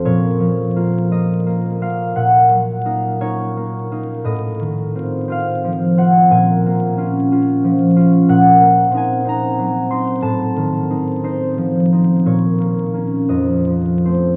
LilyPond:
\new Staff \with { instrumentName = "Harp" } { \time 6/8 \key bes \minor \tempo 4. = 59 << { <des'' f''>4. ees''4 f''8 | ges''4. des''4. | ees''4. f''4 ges''8 | aes''2. |
ges''4 aes''8 bes''4 c'''8 | a''4. c''4. | des''4. ees''4 c''8 | } \\ { <bes, f f'>8 f8 <bes f'>8 <bes f'>8 bes8 <bes f'>8 | bes,8 ges8 <bes ees'>8 <bes ees'>8 bes8 <bes ees'>8 | a,8 ees8 <c' f'>8 <c' f'>8 f8 <c' f'>8 | bes,8 bes8 <des' f'>8 <des' f'>8 f8 <des' f'>8 |
bes,8 bes8 <c' ees'>8 <c' ees'>8 ges8 <c' ees'>8 | a,8 ees8 <c' ees'>8 <c' ees'>8 f8 <c' ees'>8 | bes,8 bes8 <bes des'>8 f,8 f8 <a c'>8 | } >> }